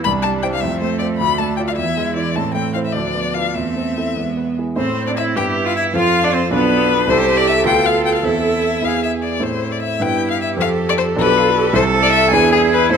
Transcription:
0.04 C2 G3 D4 B5
0.22 G3 A5
0.42 E4 C5 G5
0.53 F5
0.61 F2 A3 C4 E5
0.81 A3 C5
0.99 F4 C5 D5
1.18 D2 D4 B5
1.38 A3 A5
1.57 F4 D5 G5
1.67 F5
1.76 E2 E3 E4 E5
1.97 G#3
2.16 E4 D5
2.36 A2 C4 A5
2.55 A3 G5
2.74 E4 C5 F5
2.85 E5
2.92 D2 F3 D4 D5
3.14 B3
3.34 F4 B4 F5
3.54 E2 A3 C4 E5
3.76 C4
3.97 E4 A4
4.17 E2 G#3 B3
4.37 B3
4.58 E4 G#4
4.76 A2 C4 E4 A4 C5
5.07 D4 D5
5.16 E4 E5
5.36 G2 B3 E4 G4 B4 G5
5.65 F4 F5
5.76 E4 E5
5.94 F2 C4 F4 A4 F5
6.23 D4 D5
6.34 C4 C5
6.50 B1 B3 D4 F4 A4 B4
7.07 C2 C4 E4 G4 A4 C5
7.37 D5
7.48 E5
7.64 D2 B3 F4 A4 G5
7.86 F5
8.05 G5
8.15 F5
8.23 E2 C4 E4 A4 E5
8.81 E2 B3 E4 G#4 F5
9.03 E5
9.23 D5
9.40 A2 C4 E4 A4 C5
9.72 D5
9.83 E5
10.00 G2 B3 E4 G4 B4 G5
10.31 F5
10.42 E5
10.57 F2 C4 F4 A4 F5
10.61 A4
10.89 D5
10.98 C5
11.16 B1 D4 F4 G4 A4 B4
11.37 F4
11.55 G4
11.73 C2 C4 E4 A4 C5
12.03 D5
12.13 E5
12.31 E2 D4 E4 G#4 B4 G#5
12.52 G#4
12.73 B4
12.89 A2 C4 E4 A4 C5

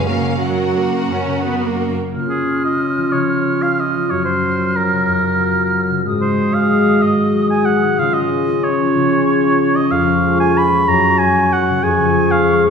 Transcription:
Already playing: C#4
0.05 F#2 A#3 C#4 F#4 A#4 F5
0.23 C#3
0.40 F#3 F#4 A#4 F#5
0.59 C#4
0.77 A#3 A#4
0.94 C#4
1.09 F#2 C#4
1.27 C#3
1.44 F#3 B3
1.62 A#3 C#4
1.81 A#4
1.98 C#4
2.14 C#3 C#4 F4 F6
2.29 G#4 C#5
2.47 C#4
2.64 F4 D#5
2.81 C#4
2.98 F3
3.13 C#3 C#5
3.29 C#5
3.62 F4 F5
3.79 C#4 D#5
3.96 F3
4.10 F#2 F#3 F#4 C#5 F6
4.25 F4 C5
4.42 F#3
4.60 A#4
4.76 F#3 A#4
4.92 C#3
5.08 F#2
5.23 F4
5.40 F#3
5.57 A#4
5.75 F#3
5.91 C#3
6.05 G#2 G#3 F#4 D#6
6.21 D#4 C5
6.38 F#3
6.54 G#4 F5
6.70 F#3
6.87 D#3
7.02 G#2 D#5
7.17 D#4
7.34 F#3
7.50 G#4 G#5
7.66 F#3 F#5
7.84 D#3
7.98 C#3 C#4 F4 F5
8.14 G#4 D#5
8.31 C#4
8.47 F4
8.64 C#4 C#5 C#6
8.80 F3
8.96 C#3
9.11 G#4
9.27 C#4
9.43 F4
9.60 C#4
9.76 F3 D#5
9.90 F2 F3 F4 F5 C#6
10.07 C#4
10.23 G#3
10.40 B4 G#5
10.56 G#3 B5
10.72 F3
10.87 F#2 F#3 F#4 A#5
11.04 C#4
11.18 F#3 G#5
11.37 A#4
11.53 F#3 F#5
11.69 C#3
11.83 F2 F3 G#4 G#5 C#6
12.00 C#4
12.16 G#3
12.32 C#5 F5
12.50 G#3
12.66 F3

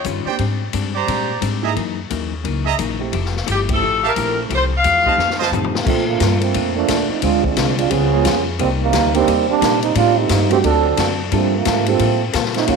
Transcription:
0.04 G2 D#3 G3 C#4 F4, kick, hi-hat pedal, ride
0.25 A#3 C4 D4 G4 C5 D5 G5, muted upright bass stroke
0.39 G#2 G3 C4 D4, kick, ride
0.73 G2 G#2 G3 C4 D4, kick, hi-hat pedal, ride
0.95 G4 C5 D5 A#5
1.07 G#2 A#2 G3 C4 D4, kick, ride
1.41 G#2 G3 C4 D4, kick, hi-hat pedal, ride
1.62 A#3 D#4 E4 G#4 D#5 E5 A#5
1.75 F#2 E3 A#3 D#4, kick, ride
2.10 D#2 F#2 E3 A#3 D#4, kick, hi-hat pedal, ride
2.43 C#2 F#2 E3 A#3 D#4, kick, ride
2.65 G#4 D#5 E5 A#5
2.78 A#1 F#2 E3 A#3 D#4, kick, hi-hat pedal, ride
3.00 A3 C4 E4 G4
3.12 F1 F3 A3 E4 G4, kick, ride
3.25 snare
3.37 snare
3.46 G1 F3 A3 E4 G4, kick, hi-hat pedal, ride
3.52 G4
3.69 A3 C4 E4 G4, kick, ride
3.74 A4
3.81 A1 F3 A3 E4 G4
4.03 G4 A#4 E5 F5 A5
4.16 A#1 F3 A3 C4 E4 G4 A4, kick, hi-hat pedal, ride
4.49 C2 F3 A3 E4 G4, kick, ride
4.55 C5
4.77 F5
4.84 E2 F3 A3 E4 G4, kick, hi-hat pedal, ride
5.05 A3 C4 D#4 F4 G4 C5 D#5 A5, kick
5.18 F2 F3 C4 D#4 A4, snare
5.30 snare
5.39 F4 C5 D#5 A5, snare
5.51 A2 F3 A3 C4 D#4 G4 A4, floor tom, hi-hat pedal
5.64 floor tom
5.75 snare
5.86 A#2 D3 F3 A3 A#3 C4 D4 F4 A4, kick, crash
6.07 D3 F3 A3 A#3
6.20 G2 A#2 A3 D4 F4, kick, snare, hi-hat pedal, ride
6.40 F3 A3 A#3 C4, ride
6.54 F2 A#2 A3 D4 F4, kick, ride
6.75 F3 A3 A#3 D4
6.88 D#2 A#2 A3 D4 F4, kick, snare, hi-hat pedal, ride
7.08 F3 A3 C4 D#4, muted upright bass stroke
7.22 D2 D3 G#3 C4 D4 F4 G#4, kick, ride
7.44 F3 G#3 C4 D4, kick
7.57 C2 D3 G#3 C4 F4, kick, snare, hi-hat pedal, ride
7.77 G#3 C4 D4 F4, ride
7.90 C#2 C#3 F3 G3 B3 C#4 F4 G#4, kick, ride
8.13 G#3 B3 C#4 F4 G#4
8.24 F2 C#3 G3 B3 F4, kick, snare, hi-hat pedal, ride
8.59 C2 C3 D#3 G3 A#3 C4 D#4, kick, ride
8.82 C3 D#3 G3 A#3
8.93 D2 C3 G3 A#3 D#4, kick, snare, hi-hat pedal, ride
9.14 D#3 G3 A#3 C4 D4 G4, ride
9.27 D#2 C3 G3 A#3 D#4, kick, ride
9.49 G3 A#3 C4 D4
9.61 A#2 C3 G3 A#3 D#4, kick, snare, hi-hat pedal, ride
9.83 G3 A#3 C4 D#4, ride
9.95 A2 G3 A#3 C4 D4 D#4 F4, kick, ride
10.17 G3 A3 C4 D#4
10.29 G2 A2 G3 C4 D#4, kick, snare, hi-hat pedal, ride
10.49 D#3 F#3 A3 C4 D4 F#4 G4, ride
10.64 D2 D3 F#3 A3 C4 D4 F#4 A4, kick, ride
10.97 F#2 D3 A3 C4 F#4, kick, snare, hi-hat pedal, ride
11.31 G2 D3 F3 G3 A3 A#3 C4 D4 F4 A4, kick, ride
11.55 D3 F3 A3 A#3
11.65 G#2 G3 A#3 F4 A4, kick, snare, hi-hat pedal, ride
11.86 F3 G3 A3 A#3 C4 D4 F4 A4, ride
11.99 A2 G3 A#3 F4 A4, kick, ride
12.33 A#2 G3 A#3 F4 A4, kick, snare, hi-hat pedal, ride
12.45 snare
12.54 F3 A3 C4 D#4, snare, ride
12.67 D#2 D#3 F#3 A#3 C#4 D#4 F4 F#4, kick, ride

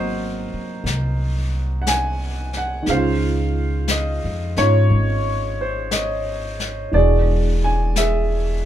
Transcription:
Already playing: G#1 F#3 A#3 C4 F#4 A#4 C5 D#5
0.53 muted upright bass stroke
0.84 C2, brush sweep, snare
1.82 F#5
1.87 G#5, brush sweep, snare, hi-hat pedal
2.53 snare
2.57 F#5
2.82 D#3 G#3, brush sweep, snare
2.88 C#2 C#4 C5 F5
2.94 F4
3.88 D#5, brush sweep, snare, hi-hat pedal
4.24 F2
4.56 G#2 C#4 D#4 F4 C#5, snare
4.90 G#1, brush sweep
5.61 C5
5.91 D#5, brush sweep, snare, hi-hat pedal
6.59 snare
6.91 E1 E3 G#3 D4 D5, brush sweep
6.96 F#4 G#4
7.64 G#5
7.96 G#4 E5, brush sweep, snare, hi-hat pedal

